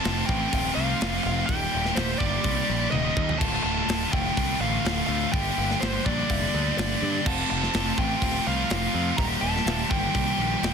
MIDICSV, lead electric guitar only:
0, 0, Header, 1, 2, 480
1, 0, Start_track
1, 0, Tempo, 480384
1, 1492, Time_signature, 4, 2, 24, 8
1, 10727, End_track
2, 0, Start_track
2, 0, Title_t, "Lead electric guitar"
2, 0, Program_c, 0, 29
2, 0, Note_on_c, 0, 81, 99
2, 250, Note_off_c, 0, 81, 0
2, 258, Note_on_c, 0, 79, 101
2, 745, Note_off_c, 0, 79, 0
2, 749, Note_on_c, 0, 77, 100
2, 1222, Note_off_c, 0, 77, 0
2, 1234, Note_on_c, 0, 77, 86
2, 1455, Note_off_c, 0, 77, 0
2, 1459, Note_on_c, 0, 79, 102
2, 1950, Note_on_c, 0, 72, 86
2, 1970, Note_off_c, 0, 79, 0
2, 2182, Note_off_c, 0, 72, 0
2, 2186, Note_on_c, 0, 74, 100
2, 2877, Note_off_c, 0, 74, 0
2, 2907, Note_on_c, 0, 75, 98
2, 3382, Note_on_c, 0, 81, 100
2, 3412, Note_off_c, 0, 75, 0
2, 3617, Note_off_c, 0, 81, 0
2, 3629, Note_on_c, 0, 81, 113
2, 4084, Note_off_c, 0, 81, 0
2, 4120, Note_on_c, 0, 79, 94
2, 4600, Note_off_c, 0, 79, 0
2, 4604, Note_on_c, 0, 77, 103
2, 5050, Note_off_c, 0, 77, 0
2, 5062, Note_on_c, 0, 77, 88
2, 5314, Note_off_c, 0, 77, 0
2, 5318, Note_on_c, 0, 79, 107
2, 5799, Note_on_c, 0, 72, 98
2, 5817, Note_off_c, 0, 79, 0
2, 6027, Note_off_c, 0, 72, 0
2, 6053, Note_on_c, 0, 74, 96
2, 6762, Note_off_c, 0, 74, 0
2, 6774, Note_on_c, 0, 74, 100
2, 7265, Note_on_c, 0, 81, 120
2, 7266, Note_off_c, 0, 74, 0
2, 7487, Note_off_c, 0, 81, 0
2, 7499, Note_on_c, 0, 81, 120
2, 7982, Note_on_c, 0, 79, 111
2, 7989, Note_off_c, 0, 81, 0
2, 8460, Note_off_c, 0, 79, 0
2, 8464, Note_on_c, 0, 77, 120
2, 9161, Note_on_c, 0, 82, 115
2, 9200, Note_off_c, 0, 77, 0
2, 9228, Note_off_c, 0, 82, 0
2, 9407, Note_on_c, 0, 81, 119
2, 9891, Note_on_c, 0, 79, 91
2, 9906, Note_off_c, 0, 81, 0
2, 10727, Note_off_c, 0, 79, 0
2, 10727, End_track
0, 0, End_of_file